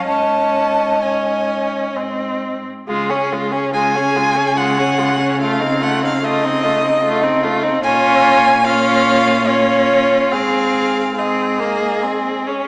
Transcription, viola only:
0.07 1.00 C#4 medium
1.02 1.98 C#4 medium
1.96 2.67 C4 medium
2.87 3.11 G#3 medium
3.10 3.34 C#4 medium
3.33 3.53 G#3 medium
3.51 3.73 C#4 medium
3.73 3.96 G#3 medium
3.95 4.17 C#4 medium
4.15 4.37 G#3 medium
4.36 4.57 C#4 medium
4.57 4.80 G#3 medium
4.78 5.00 C#4 medium
4.99 5.20 G#3 medium
5.19 5.40 C#4 medium
5.41 5.63 A3 medium
5.61 5.83 C4 medium
5.82 6.04 A3 medium
6.02 6.22 C4 medium
6.22 6.46 A3 medium
6.44 6.66 C4 medium
6.64 6.86 A3 medium
6.84 7.03 C4 medium
7.04 7.25 A3 medium
7.23 7.46 C4 medium
7.44 7.65 A3 medium
7.63 7.83 C4 medium
7.83 8.60 C#4 loud
8.65 9.45 C#4 medium
9.47 10.33 C#4 medium
10.31 11.16 C4 medium
11.16 11.61 C4 medium
11.60 12.04 A#3 medium
12.03 12.49 C4 medium
12.47 12.68 C#4 medium

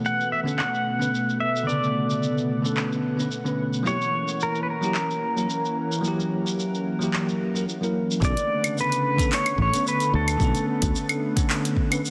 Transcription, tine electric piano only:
0.44 0.58 D3 medium
0.44 0.59 B3 medium
0.44 0.59 C#4 medium
0.44 0.60 A4 medium
0.99 1.08 D3 medium
0.99 1.08 B3 medium
0.99 1.09 C#4 medium
0.99 1.09 B4 medium
1.63 2.59 D3 medium
1.63 2.60 B3 medium
1.68 2.61 C#3 medium
1.68 2.62 A4 medium
2.62 3.14 D3 medium
2.62 3.15 B3 medium
2.62 3.15 C#4 medium
2.62 3.16 A4 medium
3.17 3.26 D3 medium
3.17 3.27 B3 medium
3.17 3.27 C#4 medium
3.17 3.28 B4 medium
3.44 3.82 D3 medium
3.44 3.82 B3 medium
3.44 3.83 C#4 medium
3.44 3.84 B4 medium
3.83 3.94 F#3 medium
3.83 3.95 A#3 medium
3.83 3.95 E4 medium
3.83 3.96 G4 medium
4.81 4.95 F#3 medium
4.81 4.95 A#3 medium
4.81 4.96 E4 medium
4.81 4.97 G4 medium
5.36 5.45 F#3 medium
5.36 5.45 A#3 medium
5.36 5.46 E4 medium
5.36 5.47 A#4 medium
6.01 6.96 F#3 medium
6.01 6.97 A#3 medium
6.05 6.98 E4 medium
6.05 6.99 G4 medium
6.99 7.51 F#3 medium
6.99 7.52 A#3 medium
6.99 7.53 E4 medium
7.03 7.53 G4 medium
7.54 7.63 F#3 medium
7.54 7.63 A#3 medium
7.54 7.64 E4 medium
7.54 7.65 A#4 medium
7.81 8.19 F#3 medium
7.81 8.19 A#3 medium
7.81 8.20 E4 medium
7.81 8.20 A#4 medium
8.20 8.31 D3 medium
8.20 8.32 B3 medium
8.20 8.32 C#4 medium
8.20 8.33 A4 loud
9.17 9.31 D3 medium
9.17 9.31 B3 medium
9.17 9.32 C#4 medium
9.17 9.33 A4 medium
9.72 9.81 D3 medium
9.72 9.82 B3 medium
9.72 9.82 C#4 medium
9.72 9.83 B4 medium
10.37 11.32 D3 medium
10.37 11.33 B3 medium
10.42 11.34 C#4 medium
10.42 11.36 A4 medium
11.36 11.88 D3 medium
11.36 11.88 B3 medium
11.36 11.89 C#4 medium
11.36 11.89 A4 medium
11.90 11.99 D3 medium
11.90 12.00 B3 medium
11.90 12.00 C#4 medium
11.90 12.01 B4 medium

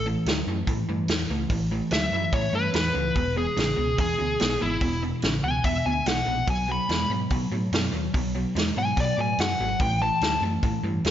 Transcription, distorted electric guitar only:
0.06 0.24 A2 medium
0.06 0.24 E3 medium
0.27 0.45 A2 medium
0.27 0.45 F#3 loud
0.48 0.66 A2 medium
0.48 0.66 E3 medium
0.68 0.86 A2 medium
0.68 0.87 E3 medium
0.89 1.07 A2 medium
0.89 1.07 E3 medium
1.09 1.28 A2 medium
1.09 1.28 E3 medium
1.30 1.49 A2 medium
1.30 1.49 E3 medium
1.51 1.69 A2 medium
1.51 1.69 E3 medium
1.71 1.90 A2 medium
1.71 1.90 E3 medium
1.92 2.11 A2 medium
1.92 2.11 F#3 medium
2.13 2.31 A2 medium
2.13 2.32 E3 medium
2.34 2.52 A2 medium
2.34 2.52 E3 medium
2.53 2.72 A2 medium
2.53 2.73 E3 medium
2.74 2.93 A2 medium
2.74 2.93 E3 medium
2.95 3.14 A2 medium
2.95 3.14 E3 medium
3.16 3.35 E2 medium
3.16 3.35 B2 medium
3.37 3.55 E2 medium
3.37 3.56 B2 medium
3.57 3.76 E2 medium
3.57 3.76 C#3 medium
3.77 3.96 E2 medium
3.77 3.97 B2 medium
3.98 4.17 E2 medium
3.98 4.18 B2 medium
4.19 4.38 E2 medium
4.19 4.38 B2 medium
4.40 4.59 E2 medium
4.40 4.59 B2 medium
4.61 4.80 E2 medium
4.61 4.80 B2 medium
4.81 5.00 E2 medium
4.81 5.01 B2 medium
5.02 5.21 E2 medium
5.02 5.22 B2 medium
5.23 5.42 E2 medium
5.23 5.42 C#3 medium
5.45 5.63 E2 medium
5.45 5.63 B2 medium
5.65 5.84 E2 medium
5.65 5.84 B2 medium
5.86 6.05 E2 medium
5.86 6.05 B2 medium
6.06 6.25 E2 medium
6.06 6.25 B2 medium
6.27 6.45 E2 medium
6.27 6.46 B2 medium
6.48 6.66 B2 medium
6.48 6.67 F#3 medium
6.68 6.87 B2 medium
6.68 6.87 F#3 medium
6.89 7.08 B2 medium
6.89 7.08 G#3 medium
7.10 7.29 B2 medium
7.10 7.29 F#3 medium
7.31 7.49 B2 medium
7.31 7.50 F#3 medium
7.52 7.70 B2 medium
7.52 7.70 F#3 medium
7.73 7.91 B2 medium
7.73 7.91 F#3 medium
7.92 8.11 B2 medium
7.92 8.12 F#3 medium
8.14 8.32 B2 medium
8.14 8.33 F#3 medium
8.35 8.53 B2 medium
8.35 8.54 F#3 medium
8.55 8.74 B2 medium
8.55 8.74 G#3 medium
8.76 8.95 B2 medium
8.76 8.95 F#3 medium
8.97 9.15 B2 medium
8.97 9.16 F#3 medium
9.18 9.37 B2 medium
9.18 9.37 F#3 medium
9.39 9.58 B2 medium
9.39 9.58 F#3 medium
9.61 9.79 B2 medium
9.61 9.79 F#3 medium
9.81 9.99 A2 medium
9.81 9.99 E3 medium
10.02 10.20 A2 medium
10.02 10.20 E3 medium
10.22 10.41 A2 medium
10.22 10.41 F#3 medium
10.42 10.61 A2 medium
10.42 10.61 E3 medium
10.63 10.82 A2 medium
10.63 10.82 E3 medium
10.83 11.02 A2 medium
10.83 11.03 E3 medium
11.05 11.11 A2 medium
11.05 11.11 E3 medium

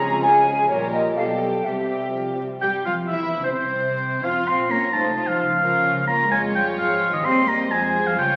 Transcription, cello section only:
0.00 0.67 C#3 medium
0.70 1.13 A#2 soft
1.17 1.64 B2 soft
1.66 2.40 C3 soft
2.62 2.83 G3 soft
2.85 3.08 F3 soft
3.08 3.43 E3 soft
3.43 3.54 C3 soft
3.55 4.23 C3 soft
4.24 4.47 F3 soft
4.47 4.70 C4 medium
4.70 4.78 A#3 soft
4.93 5.27 A3 medium
5.27 5.31 F3 medium
5.38 6.07 F3 medium
6.08 6.31 A#3 medium
6.30 6.54 G#3 medium
6.54 6.78 G3 medium
6.78 7.13 F3 medium
7.12 7.17 D#3 medium
7.24 7.47 C4 medium
7.48 7.71 A#3 medium
7.71 8.05 G#3 medium
8.06 8.18 F3 medium
8.18 8.36 G3 medium

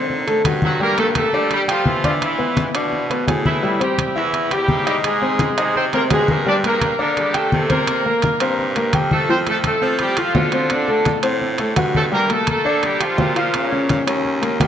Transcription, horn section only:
0.65 0.80 F#3 medium
0.65 0.80 F#4 medium
0.83 0.98 A#3 loud
0.83 0.98 A#4 loud
1.00 1.07 A3 medium
1.00 1.07 A4 medium
1.17 1.49 A3 medium
1.17 1.49 A4 medium
1.53 1.61 G3 medium
1.53 1.61 G4 medium
1.70 2.03 F3 medium
1.70 2.03 F4 medium
2.04 2.12 F3 medium
2.04 2.12 F4 medium
2.23 2.72 E3 medium
2.23 2.72 E4 medium
3.46 3.79 E3 medium
3.46 3.79 E4 medium
3.82 4.15 G3 medium
3.82 4.15 G4 medium
4.17 4.50 E3 medium
4.17 4.50 E4 medium
4.52 4.86 G3 medium
4.52 4.86 G4 medium
4.87 4.95 G3 medium
4.87 4.95 G4 medium
5.05 5.54 G#3 medium
5.05 5.54 G#4 medium
5.60 5.75 G#3 medium
5.60 5.75 G#4 medium
5.77 5.85 C4 medium
5.77 5.85 C5 loud
5.95 6.02 A#3 medium
5.95 6.02 A#4 medium
6.12 6.28 G#3 medium
6.12 6.28 G#4 medium
6.30 6.47 A#3 medium
6.30 6.47 A#4 medium
6.48 6.56 D4 medium
6.48 6.56 D5 loud
6.66 6.98 A#3 medium
6.66 6.98 A#4 medium
7.01 7.17 A#3 medium
7.01 7.17 A#4 medium
7.19 7.36 G3 medium
7.19 7.36 G4 medium
7.36 7.71 A3 medium
7.36 7.71 A4 medium
7.71 8.64 A#3 medium
7.71 8.64 A#4 medium
9.13 9.29 A3 medium
9.13 9.29 A4 medium
9.30 9.38 C4 medium
9.30 9.38 C5 loud
9.50 9.57 A3 medium
9.50 9.57 A4 medium
9.67 9.99 A3 medium
9.67 9.99 A4 medium
10.01 10.17 G3 medium
10.01 10.17 G4 medium
10.18 10.53 F3 medium
10.18 10.53 F4 medium
10.54 10.70 F3 medium
10.54 10.70 F4 medium
10.73 11.21 D3 medium
10.73 11.21 D4 medium
11.96 12.04 A3 medium
11.96 12.04 A4 medium
12.13 12.29 A#3 loud
12.13 12.29 A#4 loud
12.33 12.49 A3 medium
12.33 12.49 A4 medium
12.51 12.82 A3 medium
12.51 12.82 A4 medium
12.85 13.02 G3 medium
12.85 13.02 G4 medium
13.02 13.34 F3 medium
13.02 13.34 F4 medium
13.36 13.53 F3 medium
13.36 13.53 F4 medium
13.55 14.04 C#3 medium
13.55 14.04 C#4 medium

